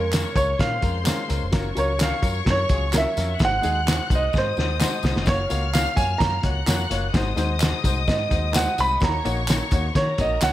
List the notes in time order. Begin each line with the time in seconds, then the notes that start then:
Already playing: F2 A#4 C#5 C#6
0.12 G#3 C#4 F4 A#4, snare, clap, closed hi-hat, tambourine
0.35 C#2 G#3 C#4 F4 A#4 C#5, kick, closed hi-hat, tambourine
0.59 A#2 G#3 C#4 F4 A#4 C5 F5 C6, kick, snare, closed hi-hat, tambourine
0.81 F2 G#3 C#4 F4 A#4, kick, closed hi-hat, tambourine
1.04 G#3 C#4 F4 A#4, snare, clap, closed hi-hat, tambourine
1.28 C#2 G#3 C#4 F4 A#4, closed hi-hat, tambourine
1.43 F1
1.52 F#1 F#3 C#4 F4 A#4 C#5 C#6, kick, snare, closed hi-hat, tambourine
1.75 C#2 F#3 C#4 F4 A#4 C#5, closed hi-hat, tambourine
1.98 F#3 C#4 F4 A#4 F5, snare, clap, closed hi-hat, tambourine
2.22 F#2 F#3 C#4 F4 A#4, kick, closed hi-hat, tambourine
2.45 F#2 F#3 C#4 F4 A#4, kick, snare, closed hi-hat
2.50 C#5
2.69 C#2 F#3 C#4 F4 G#4, kick, closed hi-hat
2.93 F#3 C#4 F4 A#4, snare, clap, closed hi-hat, tambourine
2.98 E5
3.15 F2 F#3 C#4 F4 A#4, snare, closed hi-hat, tambourine
3.39 G#1 G#3 D#4 F#4 C5 F#5 F#6, kick, snare, closed hi-hat, tambourine
3.45 F#5
3.62 D#2 G#3 D#4 F#4 G#4, closed hi-hat, tambourine
3.86 G#3 D#4 F#4 C5, snare, clap, closed hi-hat, tambourine
4.10 C2 G#3 D#4 F#4 C5, kick, closed hi-hat, tambourine
4.15 D#5
4.33 G#2 G#3 D#4 F#4 C5 D#5 D#6, kick, snare, tambourine
4.38 C5
4.56 D#2 G#3 D#4 F#4 C5, snare, tambourine
4.79 G#3 D#4 F#4 C5, snare, clap, tambourine
5.02 C2 G#3 D#4 F#4 C5, snare, tambourine
5.16 F1, snare
5.25 F#1 A#3 F4 F#4 C#5 F5 F6, kick, snare, closed hi-hat, tambourine
5.49 C#2 A#3 F4 F#4 C#5, closed hi-hat, tambourine
5.72 A#3 F4 F#4 C#5 F5, snare, clap, closed hi-hat, tambourine
5.95 F#2 A#3 F4 F#4 C#5 G#5, kick, closed hi-hat, tambourine
6.18 F#2 A#3 F4 F#4 C#5 A#5, kick, snare, closed hi-hat, tambourine
6.42 C#2 A#3 F4 F#4 C#5 F#5 F#6, kick, closed hi-hat
6.66 F2 A#3 F4 F#4 C#5, snare, clap, closed hi-hat, tambourine
6.90 F#1 A#3 F4 F#4 C#5, snare, closed hi-hat, tambourine
7.13 G#1 G#3 D#4 F#4 C5 D#5 D#6, kick, snare, closed hi-hat, tambourine
7.36 D#2 G#3 D#4 F#4 C5, closed hi-hat, tambourine
7.60 G#3 D#4 F#4 C5, snare, clap, closed hi-hat, tambourine
7.83 C2 G#3 D#4 F#4 C5, kick, closed hi-hat, tambourine
8.07 G#2 G#3 D#4 F#4 C5 D#5, kick, snare, closed hi-hat, tambourine
8.29 D#2 G#3 D#4 F#4 C5, kick, closed hi-hat, tambourine
8.52 G#3 D#4 F#4 C5, snare, clap, closed hi-hat, tambourine
8.56 F#5
8.77 C2 G#3 D#4 F#4 C5 B5, closed hi-hat, tambourine
9.00 D#2 A#3 D#4 F#4 C#5 A#5 C#6, kick, snare, closed hi-hat, tambourine
9.24 A#1 A#3 D#4 F#4 C#5, closed hi-hat, tambourine
9.48 A#3 D#4 F#4 C#5, snare, clap, closed hi-hat, tambourine
9.71 D#2 A#3 D#4 F#4 C#5, kick, closed hi-hat, tambourine
9.95 D#3 A#3 D#4 F#4 A#4 C#5 A#5, kick, snare, closed hi-hat, tambourine
10.18 A#1 A#3 D#4 F#4 C#5 D#5, kick, closed hi-hat, tambourine
10.41 C#2 A#3 D#4 F#4 C#5 F#5, snare, clap, closed hi-hat, tambourine